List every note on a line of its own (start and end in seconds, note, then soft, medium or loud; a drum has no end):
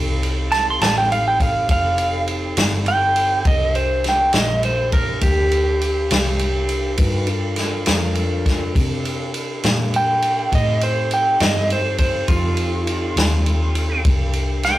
0.00 0.78 C2 medium
0.00 3.43 C4 medium
0.00 3.43 D#4 medium
0.00 3.43 G4 medium
0.00 3.43 A4 medium
0.23 ride soft
0.52 0.66 A5 medium
0.52 snare soft
0.52 ride medium
0.70 0.82 C6 medium
0.81 1.67 A1 medium
0.81 0.96 A5 medium
0.81 snare loud
0.81 ride medium
0.98 1.11 G5 medium
1.12 1.26 F5 medium
1.12 ride medium
1.28 1.41 G5 medium
1.40 1.70 F5 medium
1.40 kick medium
1.40 ride medium
1.69 2.55 F1 medium
1.69 2.28 F5 medium
1.69 kick medium
1.69 ride medium
1.98 ride medium
2.28 ride medium
2.57 3.43 G1 medium
2.57 snare loud
2.57 ride medium
2.86 3.45 G5 medium
2.86 ride medium
3.16 ride medium
3.45 4.32 C2 medium
3.45 6.96 D4 medium
3.45 6.96 E4 medium
3.45 6.96 G4 medium
3.45 6.96 A#4 medium
3.45 3.75 D#5 medium
3.45 kick loud
3.45 ride medium
3.75 4.04 C5 medium
3.75 ride soft
4.04 snare soft
4.04 ride medium
4.09 4.36 G5 medium
4.33 5.20 A#1 medium
4.33 4.64 D#5 medium
4.33 snare loud
4.33 ride medium
4.63 4.93 C5 medium
4.63 ride medium
4.92 5.22 A#4 medium
4.92 kick medium
4.92 ride medium
5.21 6.08 D2 medium
5.21 6.96 G4 medium
5.21 kick medium
5.21 ride medium
5.52 ride medium
5.82 ride medium
6.11 6.97 C2 medium
6.11 snare loud
6.11 ride medium
6.39 ride medium
6.69 ride medium
6.97 7.85 G2 medium
6.97 7.28 D#4 medium
6.97 7.29 F#4 medium
6.97 7.25 A#4 medium
6.97 7.29 B4 medium
6.97 kick medium
6.97 ride medium
7.26 8.73 D4 medium
7.26 8.74 F4 medium
7.26 8.74 A4 medium
7.26 8.73 A#4 medium
7.26 ride soft
7.56 snare soft
7.56 ride medium
7.86 8.74 F2 medium
7.86 snare medium
7.86 ride medium
8.15 ride soft
8.46 kick medium
8.46 snare soft
8.46 ride medium
8.74 9.62 C3 medium
8.74 10.50 D4 medium
8.74 10.51 E4 medium
8.74 10.50 G4 medium
8.74 10.51 A#4 medium
8.74 kick loud
8.74 ride medium
9.05 ride medium
9.34 ride medium
9.63 10.50 A#2 medium
9.63 snare loud
9.63 ride medium
9.94 10.52 G5 medium
9.94 ride medium
10.22 ride medium
10.51 11.38 A2 medium
10.51 14.01 C4 medium
10.51 14.02 D#4 medium
10.51 14.02 G4 medium
10.51 14.01 A4 medium
10.51 10.82 D#5 medium
10.51 kick medium
10.51 ride medium
10.81 11.12 C5 medium
10.81 ride medium
11.11 11.41 G5 medium
11.11 ride medium
11.40 12.27 G2 medium
11.40 11.70 D#5 medium
11.40 snare loud
11.40 ride medium
11.70 11.98 C5 medium
11.70 ride medium
11.98 12.28 C5 medium
11.98 kick medium
11.98 ride medium
12.28 13.15 F2 medium
12.28 14.01 F4 medium
12.28 kick loud
12.28 ride medium
12.57 ride medium
12.87 ride medium
13.16 14.03 D#2 medium
13.16 snare loud
13.16 ride medium
13.46 ride medium
13.75 ride medium
14.05 14.79 C2 medium
14.05 14.79 D4 medium
14.05 14.79 E4 medium
14.05 14.79 G4 medium
14.05 14.79 A#4 medium
14.05 kick loud
14.05 ride medium
14.33 ride soft
14.63 14.79 G5 medium
14.63 snare soft
14.63 ride medium